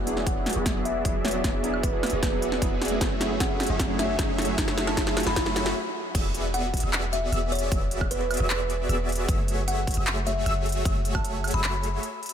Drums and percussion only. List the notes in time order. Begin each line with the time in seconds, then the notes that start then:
0.07 closed hi-hat
0.17 snare
0.27 kick, closed hi-hat
0.46 snare, closed hi-hat
0.49 closed hi-hat
0.53 closed hi-hat
0.66 kick, snare, closed hi-hat
0.85 closed hi-hat
1.05 kick, closed hi-hat
1.25 snare, closed hi-hat
1.28 closed hi-hat
1.31 closed hi-hat
1.44 kick, snare, closed hi-hat
1.64 closed hi-hat
1.74 high woodblock
1.83 kick, closed hi-hat
2.03 snare, closed hi-hat, high woodblock
2.06 closed hi-hat
2.10 closed hi-hat
2.23 kick, snare, closed hi-hat
2.42 closed hi-hat
2.52 snare
2.62 kick, closed hi-hat
2.82 snare, closed hi-hat
2.85 closed hi-hat
2.88 closed hi-hat
3.01 kick, snare, closed hi-hat
3.21 snare, closed hi-hat
3.40 kick, snare, closed hi-hat
3.60 snare, closed hi-hat
3.63 closed hi-hat
3.66 closed hi-hat
3.80 kick, snare, closed hi-hat
3.99 snare, closed hi-hat
4.19 kick, snare, closed hi-hat
4.38 snare, closed hi-hat
4.42 closed hi-hat
4.45 closed hi-hat
4.58 kick, snare, closed hi-hat
4.68 snare
4.78 snare, closed hi-hat
4.87 snare, high woodblock
4.97 kick, snare, closed hi-hat
5.07 snare
5.17 snare, closed hi-hat, high woodblock
5.20 closed hi-hat
5.23 snare, closed hi-hat
5.36 kick, snare, closed hi-hat
5.46 snare
5.56 snare, closed hi-hat
5.66 snare
6.15 kick, closed hi-hat, crash
6.34 closed hi-hat
6.54 closed hi-hat
6.74 kick, closed hi-hat
6.77 closed hi-hat
6.80 closed hi-hat
6.93 clap, closed hi-hat
7.13 closed hi-hat
7.32 closed hi-hat
7.52 closed hi-hat
7.55 closed hi-hat
7.59 closed hi-hat
7.72 kick, closed hi-hat
7.91 closed hi-hat
8.01 kick, high woodblock
8.11 closed hi-hat
8.31 closed hi-hat, high woodblock
8.34 closed hi-hat
8.37 closed hi-hat
8.50 clap, closed hi-hat
8.70 closed hi-hat
8.89 closed hi-hat
9.09 closed hi-hat
9.12 closed hi-hat
9.15 closed hi-hat
9.29 kick, closed hi-hat
9.48 closed hi-hat
9.68 closed hi-hat
9.87 kick, closed hi-hat
9.91 closed hi-hat
9.94 closed hi-hat
10.07 clap, closed hi-hat
10.27 closed hi-hat
10.46 closed hi-hat
10.66 closed hi-hat
10.69 closed hi-hat
10.72 closed hi-hat
10.85 kick, closed hi-hat
11.05 closed hi-hat
11.15 kick, high woodblock
11.25 closed hi-hat
11.44 closed hi-hat, high woodblock
11.48 closed hi-hat
11.51 closed hi-hat
11.64 clap, closed hi-hat
11.83 closed hi-hat
12.03 closed hi-hat
12.23 closed hi-hat
12.26 closed hi-hat
12.29 closed hi-hat